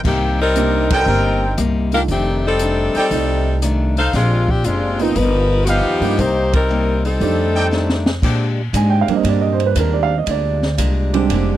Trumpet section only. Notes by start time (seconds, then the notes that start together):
0.91 D#4 A#4 C5 G5
2.95 D#4 A4 D5 G5
5.68 D#4 G4 B4 F5
7.56 D#4 A4 D5 G5